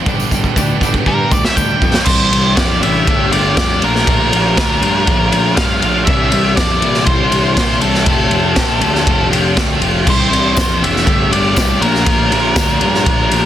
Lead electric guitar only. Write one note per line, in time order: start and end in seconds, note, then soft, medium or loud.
1.07 1.32 A#4 medium
1.32 1.45 D5 medium
1.45 1.57 E5 medium
1.56 2.05 G5 loud
2.05 2.58 C5 medium
2.56 2.82 D5 medium
2.83 3.32 E5 loud
3.33 3.56 D5 medium
3.57 3.83 D5 medium
3.84 5.54 A#4 medium
5.56 5.80 F5 loud
5.81 6.05 F5 loud
6.05 6.56 E5 loud
6.56 7.03 D5 medium
7.06 7.53 C5 medium
7.54 7.81 C5 medium
7.81 9.27 A4 medium
10.10 10.85 C5 loud
10.84 11.32 E5 loud
11.33 11.55 D5 medium
11.56 11.81 D5 medium
11.81 13.46 A#4 medium